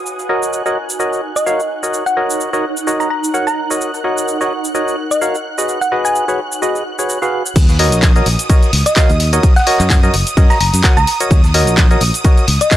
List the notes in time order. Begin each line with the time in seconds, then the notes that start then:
Already playing: F#4 G#5
0.06 D#4 F#6, cabasa
0.19 C#5, cabasa
0.29 F#4 A#4 C#5 D#5
0.43 cabasa
0.53 cabasa
0.66 F#4 A#4 C#5 D#5, cabasa
0.90 F#5, cabasa
1.00 F#4 A#4 C#5 D#5, cabasa
1.13 cabasa
1.36 D#5, cabasa
1.46 F#4 A#4 C#5 F5, cabasa
1.60 cabasa
1.83 F#4 A#4 C#5 D#5, cabasa
1.94 cabasa
2.06 F#5, cabasa
2.17 F#4 A#4 C#5 D#5
2.30 cabasa
2.40 cabasa
2.53 F#4 A#4 C#5 D#5, cabasa
2.77 cabasa
2.87 F#4 A#4 C#5 D#5, cabasa
3.00 A#5, cabasa
3.10 A#5
3.24 cabasa
3.34 F#4 A#4 C#5 F#5, cabasa
3.47 A#5, cabasa
3.70 F#4 A#4 C#5 D#5, cabasa
3.81 cabasa
3.94 cabasa
4.04 F#4 A#4 C#5 D#5
4.18 cabasa
4.28 cabasa
4.41 F#4 A#4 C#5 D#5, cabasa
4.64 cabasa
4.75 F#4 A#4 C#5 D#5, cabasa
4.88 cabasa
5.11 D#5, cabasa
5.21 F#4 A#4 C#5 F5, cabasa
5.35 cabasa
5.45 F#4
5.58 F#4 G#4 B4 D#5, cabasa
5.69 cabasa
5.81 F#5, cabasa
5.92 F#4 G#4 B4 D#5
6.05 G#5, cabasa
6.15 B4, cabasa
6.28 F#4 G#4 B4 C#5, cabasa
6.40 G#5
6.52 cabasa
6.62 F#4 G#4 B4 D#5, cabasa
6.75 cabasa
6.99 F#4 G#4 B4 C#5, cabasa
7.09 cabasa
7.22 F#4 G#4 B4 F5, cabasa
7.46 cabasa
7.56 D#2 D#6, kick, closed hi-hat, crash, ride, cabasa
7.69 snare, closed hi-hat, cabasa
7.79 F#4 A#4 C#5 D#5, snare, open hi-hat, ride
7.92 A#1, closed hi-hat, cabasa
8.02 kick, snare, clap, closed hi-hat, ride, cabasa
8.16 F#4 A#4 C#5 D#5, closed hi-hat, cabasa
8.26 A#1, open hi-hat, ride
8.39 closed hi-hat, cabasa
8.49 F#4 A#4 C#5 D#5, kick, closed hi-hat, ride, cabasa
8.63 closed hi-hat, cabasa
8.73 C#2, snare, open hi-hat, ride
8.86 D#5, closed hi-hat, cabasa
8.96 F#4 A#4 C#5 F5, kick, snare, clap, closed hi-hat, ride, cabasa
9.09 D#2, closed hi-hat, cabasa
9.20 snare, open hi-hat, ride
9.33 F#4 A#4 C#5 D#5, closed hi-hat, cabasa
9.43 kick, closed hi-hat, ride, cabasa
9.56 F#5, snare, closed hi-hat, cabasa
9.67 F#4 A#4 C#5 D#5, open hi-hat, ride
9.80 F#2, clap, closed hi-hat, ride, cabasa
9.90 kick, snare, clap, closed hi-hat, ride, cabasa
10.03 F#4 A#4 C#5 D#5, closed hi-hat, cabasa
10.14 F#1, open hi-hat, ride
10.27 closed hi-hat, cabasa
10.37 F#2 F#4 A#4 C#5 D#5, kick, closed hi-hat, ride, cabasa
10.50 A#5, snare, closed hi-hat, cabasa
10.61 F#1 A#5, open hi-hat, ride
10.73 F#2, snare, closed hi-hat, cabasa
10.84 F#4 A#4 C#5 F#5, kick, snare, clap, closed hi-hat, ride, cabasa
10.97 C#2 A#5, closed hi-hat, cabasa
11.07 open hi-hat, ride
11.20 F#4 A#4 C#5 D#5, closed hi-hat, cabasa
11.31 D#2, kick, closed hi-hat, ride, cabasa
11.44 snare, closed hi-hat, cabasa
11.54 F#4 A#4 C#5 D#5, snare, open hi-hat, ride
11.67 A#1, closed hi-hat, cabasa
11.77 kick, snare, clap, closed hi-hat, ride, cabasa
11.91 F#4 A#4 C#5 D#5, closed hi-hat, cabasa
12.01 A#1, open hi-hat, ride
12.14 closed hi-hat, cabasa
12.24 F#4 A#4 C#5 D#5, kick, closed hi-hat, ride, cabasa
12.38 closed hi-hat, cabasa
12.47 C#2, snare, open hi-hat, ride
12.61 D#5, closed hi-hat, cabasa
12.71 F#4 A#4 C#5 F5, kick, snare, clap, closed hi-hat, ride, cabasa